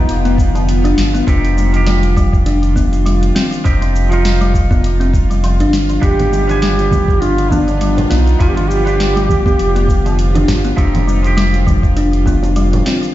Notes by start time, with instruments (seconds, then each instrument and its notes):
Already playing: clean electric guitar F3 B3 G4 D5, synth drone B3 F4, duduk D#4
0.09 sub bass F1, closed hi-hat, shaker
0.25 kalimba B3, closed hi-hat, shaker
0.38 kick, shaker
0.55 kalimba D3, closed hi-hat, shaker
0.69 closed hi-hat, shaker
0.84 kalimba D4, closed hi-hat, shaker
0.98 sub bass G1, snare, shaker
1.14 kalimba B3, closed hi-hat, shaker
1.27 sub bass F1, clean electric guitar F3 G#3 C4 D#4 G4, synth drone F4, kick, closed hi-hat, shaker
1.45 closed hi-hat, shaker
1.57 kalimba G3, shaker
1.73 clean electric guitar D#3 F3 G4, closed hi-hat, shaker
1.86 kalimba G3, snare, closed hi-hat, shaker
2.03 closed hi-hat, shaker
2.17 kalimba G3, kick, shaker
2.33 kick, shaker
2.46 kalimba D4, closed hi-hat, shaker
2.63 closed hi-hat, shaker
2.76 kalimba B3, kick, shaker
2.93 closed hi-hat, shaker
3.06 kalimba G3, closed hi-hat, shaker
3.23 closed hi-hat, shaker
3.35 kalimba C4, snare, shaker
3.52 closed hi-hat, shaker
3.65 sub bass F1, clean electric guitar F3 C4 D#4 G4, kick, closed hi-hat, shaker
3.81 kalimba F3, closed hi-hat, shaker
3.96 shaker
4.09 clean electric guitar F3 D#4, kalimba F4, closed hi-hat, shaker
4.14 clean electric guitar F4
4.25 snare, closed hi-hat, shaker
4.41 kalimba G3, closed hi-hat, shaker
4.54 kick, shaker
4.71 kalimba B3, kick, shaker
4.84 closed hi-hat, shaker
5.00 kalimba C4, closed hi-hat, shaker
5.14 kick, shaker
5.30 kalimba G3, closed hi-hat, shaker
5.44 kalimba F3, closed hi-hat, shaker
5.60 sub bass G1, kalimba D4, closed hi-hat, shaker
5.73 snare, shaker
5.90 kalimba F3, closed hi-hat, shaker
6.01 sub bass G1, clean electric guitar F3 G#3 B3 D4 D#4, synth drone B3, duduk G4, kick, closed hi-hat, shaker
6.19 closed hi-hat, high conga, low conga, shaker
6.32 kalimba G3, shaker
6.47 clean electric guitar D#3 F3 B3 D4 G#5, closed hi-hat, shaker
6.62 kalimba G3, duduk G4, snare, closed hi-hat, shaker
6.79 closed hi-hat, high bongo, shaker
6.91 kalimba G3, kick, high conga, shaker
7.08 kick, shaker
7.21 kalimba D4, duduk F4, closed hi-hat, shaker
7.38 closed hi-hat, shaker
7.51 kalimba B3, duduk D4, kick, high conga, shaker
7.67 closed hi-hat, high bongo, shaker
7.81 kalimba G3, closed hi-hat, shaker
7.97 closed hi-hat, high bongo, low conga, shaker
8.10 sub bass B1, kalimba B3, duduk D#4, snare, high bongo, shaker
8.27 closed hi-hat, shaker
8.39 sub bass G1, clean electric guitar F3 B3 D4 D#4 G#5, duduk F4, kick, closed hi-hat, shaker
8.49 duduk G4
8.55 kalimba F3, duduk F4, closed hi-hat, high conga, shaker
8.69 duduk G4, shaker
8.84 clean electric guitar F3 B3 D4, kalimba F4, closed hi-hat, shaker
8.88 clean electric guitar G4
9.00 snare, closed hi-hat, shaker
9.16 kalimba G3, closed hi-hat, high bongo, shaker
9.29 kick, high conga, shaker
9.46 kalimba B3, kick, shaker
9.59 sub bass F1, closed hi-hat, shaker
9.75 kalimba B3, closed hi-hat, shaker
9.89 kick, shaker
10.06 kalimba D3, closed hi-hat, shaker
10.19 closed hi-hat, shaker
10.34 kalimba D4, closed hi-hat, high bongo, high conga, shaker
10.48 sub bass G1, snare, low conga, shaker
10.64 kalimba B3, closed hi-hat, high bongo, shaker
10.77 sub bass F1, clean electric guitar F3 G#3 C4 D#4 G4, kick, closed hi-hat, shaker
10.95 closed hi-hat, high conga, low conga, shaker
11.07 kalimba G3, shaker
11.23 clean electric guitar D#3 F3, closed hi-hat, shaker
11.27 clean electric guitar G4
11.37 kalimba G3, snare, closed hi-hat, shaker
11.54 closed hi-hat, high bongo, shaker
11.67 kalimba G3, kick, high conga, shaker
11.83 kick, shaker
11.97 kalimba D4, closed hi-hat, shaker
12.13 closed hi-hat, shaker
12.26 kalimba B3, kick, high conga, shaker
12.43 closed hi-hat, high bongo, shaker
12.56 kalimba G3, closed hi-hat, shaker
12.73 closed hi-hat, high bongo, low conga, shaker
12.86 kalimba C4, snare, high bongo, shaker
13.03 closed hi-hat, shaker